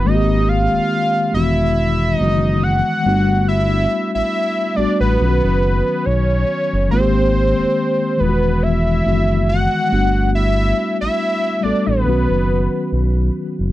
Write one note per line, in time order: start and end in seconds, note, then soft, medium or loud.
0.04 0.68 G#1 loud
0.04 1.22 D#3 medium
0.04 1.23 G#3 medium
0.04 1.23 A#3 medium
0.04 1.24 C4 medium
0.04 0.50 D#5 loud
0.09 0.14 F#4 medium
0.15 1.28 G4 medium
0.49 1.34 F5 loud
0.73 0.80 E1 soft
1.32 2.16 E1 medium
1.32 2.13 D#3 medium
1.32 2.11 E3 medium
1.32 2.12 G#3 medium
1.32 2.12 B3 medium
1.32 2.15 E5 loud
1.36 2.13 F#4 medium
2.15 3.04 E3 medium
2.15 3.05 G#3 medium
2.15 2.65 D#5 loud
2.20 2.82 F#1 medium
2.20 3.06 D#3 medium
2.20 3.05 B3 medium
2.20 3.07 F#4 medium
2.63 3.48 F#5 loud
3.03 3.87 G1 medium
3.03 4.61 G3 medium
3.03 4.62 A3 medium
3.03 4.62 B3 medium
3.03 4.63 D4 medium
3.08 4.64 F#4 medium
3.48 4.11 E5 loud
4.15 4.23 A1 soft
4.15 4.78 E5 loud
4.75 4.86 A1 soft
4.75 5.18 G3 medium
4.75 5.19 A3 medium
4.75 5.19 B3 medium
4.75 5.20 D4 medium
4.75 5.00 D5 medium
4.80 5.21 F#4 medium
5.00 5.18 A1 medium
5.00 6.07 B4 medium
5.18 5.41 B1 medium
5.18 6.75 D#3 medium
5.18 6.76 F#3 medium
5.18 6.77 B3 medium
5.18 6.77 C#4 medium
5.22 5.28 F4 medium
5.29 6.81 F#4 medium
5.44 5.83 F#1 medium
6.05 6.45 B1 medium
6.05 6.90 C#5 medium
6.73 6.90 F#1 medium
6.89 7.54 G#1 medium
6.89 8.07 D#3 medium
6.89 8.08 G#3 medium
6.89 8.09 A#3 medium
6.89 8.09 C4 medium
6.89 8.21 C5 loud
6.94 7.00 F4 medium
7.00 8.13 G4 medium
7.58 7.66 E1 soft
8.17 9.02 E1 medium
8.17 8.99 D#3 medium
8.17 8.97 E3 medium
8.17 8.97 G#3 medium
8.17 8.98 B3 medium
8.17 8.64 B4 medium
8.22 8.28 F4 medium
8.29 9.03 F#4 medium
8.63 9.48 E5 medium
9.04 9.68 F#1 medium
9.04 9.92 D#3 soft
9.04 9.90 E3 medium
9.04 9.91 G#3 medium
9.04 9.90 B3 soft
9.08 9.92 F#4 medium
9.49 10.30 F#5 loud
9.89 10.73 G1 medium
9.89 11.47 G3 medium
9.89 11.47 A3 medium
9.89 11.48 B3 medium
9.89 11.49 D4 medium
9.94 11.49 F#4 medium
10.35 10.97 E5 loud
11.01 11.09 A1 soft
11.01 11.64 E5 loud
11.61 11.73 A1 soft
11.61 12.04 G3 medium
11.61 12.05 A3 medium
11.61 12.05 B3 medium
11.61 12.06 D4 medium
11.61 11.88 D5 medium
11.66 12.07 A4 medium
11.86 12.04 A1 medium
11.86 13.34 B4 medium
12.04 12.27 B1 medium
12.04 13.61 D#3 medium
12.04 13.62 F#3 medium
12.04 13.63 B3 medium
12.04 13.63 C#4 medium
12.09 13.64 F#4 medium
12.30 12.68 F#1 medium
12.92 13.30 B1 medium
13.59 13.72 F#1 medium